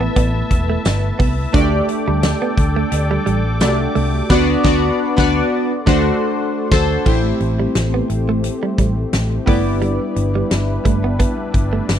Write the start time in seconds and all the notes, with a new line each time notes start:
Already playing: A3 B3 E4 B4 E5 A5 E6
0.01 B3
0.16 A1 B3, kick, closed hi-hat, cowbell
0.51 E1, muted clean electric guitar stroke, kick, closed hi-hat
0.70 A3
0.85 G1, snare, closed hi-hat, tambourine, cowbell
1.19 C2 B3, kick, open hi-hat
1.53 D2 A3 D4 F#4 A4 D5 G5 D6, kick, closed hi-hat, cowbell
1.61 G4
1.89 muted clean electric guitar stroke, closed hi-hat
2.08 D2 G3
2.23 snare, closed hi-hat, tambourine, cowbell
2.42 B3
2.57 D2, muted clean electric guitar stroke, kick, closed hi-hat
2.76 A3
2.92 D2, muted clean electric guitar stroke, closed hi-hat, cowbell
3.11 G3
3.26 A1 G3, closed hi-hat
3.60 C2 A3 D4 F#4 D5, snare, closed hi-hat, tambourine, cowbell
3.68 G4
3.95 C2 A3, open hi-hat
4.30 D2 B3 D4 F#4 B4 D5 F#5, kick, snare, crash
4.63 D2 B3 D4 F#4 D5, kick, snare
5.17 D2 B3 D4 F#4 D5, kick, snare
5.68 A4 C6
5.86 D2 A3 D4 F#4 C5, kick, snare
6.71 D2 A4 C5, kick, snare, crash
7.05 A1 A3 C4 E4 G4 C5, kick, crash
7.40 A1, muted clean electric guitar stroke, closed hi-hat
7.60 G3
7.75 A1, snare, closed hi-hat
7.94 B3
8.10 A1, muted clean electric guitar stroke, closed hi-hat
8.29 A3
8.44 muted clean electric guitar stroke, closed hi-hat
8.63 G3
8.78 A1 G3, kick, closed hi-hat
9.13 A1, snare, closed hi-hat
9.46 G1 G3 A3 B3 D4 E4 G4 B4 D5, kick, open hi-hat
9.82 G3, closed hi-hat
10.16 G1, muted clean electric guitar stroke, closed hi-hat
10.35 G3
10.51 G1, muted clean electric guitar stroke, snare, closed hi-hat
10.85 G1 A3, kick, closed hi-hat
11.04 B3
11.19 B3, kick, closed hi-hat
11.54 G1, muted clean electric guitar stroke, kick, closed hi-hat
11.73 A3
11.89 G1, snare, closed hi-hat